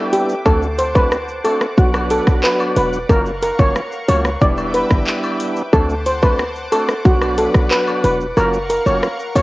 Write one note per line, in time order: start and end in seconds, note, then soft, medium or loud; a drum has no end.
0.00 0.35 G3 medium
0.00 0.35 B3 medium
0.00 0.35 D4 medium
0.00 0.35 E4 loud
0.00 0.44 B4 medium
0.00 0.44 E5 medium
0.00 0.44 G5 medium
0.00 3.05 D6 medium
0.13 0.23 G4 medium
0.13 closed hi-hat medium
0.13 cabasa medium
0.13 shaker medium
0.29 shaker medium
0.45 1.41 D2 loud
0.45 0.67 A3 loud
0.45 0.67 C4 medium
0.45 0.67 D4 medium
0.45 0.68 F#4 loud
0.45 0.56 A4 loud
0.45 1.76 C5 medium
0.45 4.37 F#5 medium
0.45 1.76 A5 medium
0.45 kick loud
0.45 high woodblock medium
0.45 shaker medium
0.62 shaker medium
0.79 0.89 C5 medium
0.79 closed hi-hat medium
0.79 cabasa medium
0.79 shaker medium
0.95 1.17 A3 medium
0.95 1.17 C4 medium
0.95 1.17 D4 medium
0.95 1.17 F#4 medium
0.95 1.06 B4 medium
0.95 kick loud
0.95 high woodblock medium
0.95 shaker medium
1.12 cross-stick loud
1.12 shaker medium
1.28 shaker medium
1.44 1.66 A3 medium
1.44 1.66 C4 medium
1.44 1.66 D4 medium
1.44 1.66 F#4 medium
1.44 1.55 A4 medium
1.44 closed hi-hat medium
1.44 cabasa medium
1.44 high woodblock medium
1.44 shaker medium
1.61 cross-stick loud
1.61 shaker medium
1.77 2.20 B1 loud
1.77 2.99 F#3 loud
1.77 2.99 B3 medium
1.77 2.99 D4 medium
1.77 1.88 F#4 medium
1.77 2.99 F#4 loud
1.77 3.08 B4 medium
1.77 3.08 D5 medium
1.77 kick loud
1.77 shaker medium
1.94 cross-stick medium
1.94 high woodblock medium
1.94 shaker medium
2.10 2.21 A4 medium
2.10 closed hi-hat medium
2.10 cabasa medium
2.10 shaker medium
2.27 2.41 B1 medium
2.27 kick medium
2.27 cross-stick loud
2.27 shaker medium
2.43 2.54 B4 medium
2.43 clap loud
2.43 shaker medium
2.60 high woodblock medium
2.60 shaker soft
2.76 3.04 E1 loud
2.76 2.87 B4 medium
2.76 closed hi-hat medium
2.76 cabasa medium
2.76 shaker medium
2.93 shaker medium
3.09 3.51 F#1 loud
3.09 3.31 F#3 loud
3.09 3.31 A#3 medium
3.09 3.31 C#4 medium
3.09 3.31 F4 loud
3.09 4.40 A#4 medium
3.09 3.20 A#4 loud
3.09 4.40 F5 medium
3.09 4.40 C#6 medium
3.09 kick loud
3.09 high woodblock medium
3.09 shaker medium
3.26 shaker medium
3.42 3.53 A#4 medium
3.42 closed hi-hat medium
3.42 cabasa medium
3.42 shaker medium
3.59 3.73 F#1 medium
3.59 3.80 F#3 medium
3.59 3.81 A#3 medium
3.59 3.81 C#4 medium
3.59 3.81 F4 medium
3.59 3.69 C#5 medium
3.59 kick loud
3.59 high woodblock medium
3.59 shaker medium
3.75 cross-stick loud
3.75 shaker medium
3.92 shaker medium
4.08 4.36 C#2 medium
4.08 4.30 F#3 medium
4.08 4.30 A#3 medium
4.08 4.30 C#4 medium
4.08 4.30 F4 medium
4.08 4.19 C#5 medium
4.08 closed hi-hat medium
4.08 cabasa medium
4.08 high woodblock medium
4.08 shaker medium
4.25 cross-stick loud
4.25 shaker medium
4.41 4.83 E1 loud
4.41 5.62 G3 loud
4.41 5.63 B3 medium
4.41 5.63 D4 medium
4.41 5.63 E4 loud
4.41 5.72 B4 medium
4.41 4.52 D5 medium
4.41 5.72 E5 medium
4.41 5.72 G5 medium
4.41 5.72 D6 medium
4.41 kick loud
4.41 shaker medium
4.57 high woodblock medium
4.57 shaker medium
4.74 4.85 B4 medium
4.74 closed hi-hat medium
4.74 cabasa medium
4.74 shaker medium
4.91 5.05 G1 medium
4.91 kick medium
4.91 cross-stick loud
4.91 shaker medium
5.07 clap medium
5.07 shaker medium
5.24 high woodblock medium
5.24 shaker soft
5.40 closed hi-hat medium
5.40 cabasa medium
5.40 shaker medium
5.57 shaker medium
5.73 6.68 D2 loud
5.73 5.95 A3 loud
5.73 5.95 C4 medium
5.73 5.95 D4 medium
5.73 5.95 F#4 loud
5.73 5.84 A4 medium
5.73 7.04 C5 medium
5.73 9.42 F#5 medium
5.73 7.04 A5 medium
5.73 8.34 D6 medium
5.73 kick loud
5.73 high woodblock medium
5.73 shaker medium
5.89 shaker medium
6.06 6.17 C5 medium
6.06 closed hi-hat medium
6.06 cabasa medium
6.06 shaker medium
6.22 6.44 A3 medium
6.22 6.44 C4 medium
6.22 6.44 D4 medium
6.22 6.44 F#4 medium
6.22 6.33 B4 medium
6.22 kick loud
6.22 high woodblock medium
6.22 shaker medium
6.39 cross-stick loud
6.39 shaker medium
6.56 shaker medium
6.72 6.94 A3 medium
6.72 6.94 C4 medium
6.72 6.94 D4 medium
6.72 6.94 F#4 medium
6.72 6.83 A4 medium
6.72 closed hi-hat medium
6.72 cabasa medium
6.72 high woodblock medium
6.72 shaker medium
6.89 cross-stick loud
6.89 shaker medium
7.05 7.47 B1 loud
7.05 8.26 F#3 loud
7.05 8.26 B3 medium
7.05 8.26 D4 medium
7.05 7.16 F#4 medium
7.05 8.26 F#4 loud
7.05 8.36 B4 medium
7.05 8.35 D5 medium
7.05 kick loud
7.05 shaker medium
7.21 cross-stick medium
7.21 high woodblock medium
7.21 shaker medium
7.38 7.49 A4 medium
7.38 closed hi-hat medium
7.38 cabasa medium
7.38 shaker medium
7.54 7.69 B1 medium
7.54 kick medium
7.54 cross-stick loud
7.54 shaker medium
7.71 7.81 B4 medium
7.71 clap loud
7.71 shaker medium
7.87 high woodblock medium
7.87 shaker soft
8.04 8.32 E1 loud
8.04 8.14 B4 medium
8.04 closed hi-hat medium
8.04 cabasa medium
8.04 shaker medium
8.20 shaker medium
8.37 8.79 F#1 loud
8.37 8.58 F#3 loud
8.37 8.59 A#3 medium
8.37 8.59 C#4 medium
8.37 8.59 F4 loud
8.37 9.42 A#4 medium
8.37 8.47 A#4 loud
8.37 9.42 F5 medium
8.37 9.42 C#6 medium
8.37 high woodblock medium
8.37 shaker medium
8.53 shaker medium
8.70 8.80 A#4 medium
8.70 closed hi-hat medium
8.70 cabasa medium
8.70 shaker medium
8.86 9.00 F#1 medium
8.86 9.08 F#3 medium
8.86 9.08 A#3 medium
8.86 9.08 C#4 medium
8.86 9.08 F4 medium
8.86 8.97 C#5 medium
8.86 high woodblock medium
8.86 shaker medium
9.03 cross-stick loud
9.03 shaker medium
9.19 shaker medium
9.35 9.42 C#2 medium
9.35 9.42 F#3 medium
9.35 9.42 A#3 medium
9.35 9.42 C#4 medium
9.35 9.42 F4 medium
9.35 9.42 C#5 medium
9.35 closed hi-hat medium
9.35 cabasa medium
9.35 high woodblock medium
9.35 shaker medium